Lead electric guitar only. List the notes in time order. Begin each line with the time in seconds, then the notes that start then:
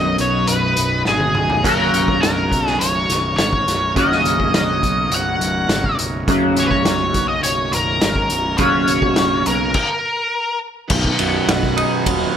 Already playing: D#5
0.21 C#5
0.47 B4
1.08 G#4
1.66 A#4
2.22 A#4
2.68 G#4
2.79 C#5
3.37 C#5
3.98 D#5
4.55 D#5
5.14 F#5
6.60 B4 C#5
6.71 C#5
7.28 D#5
7.43 C#5
7.72 A#4
8.02 A#4
8.57 C#5
9.46 A#4
9.75 A#4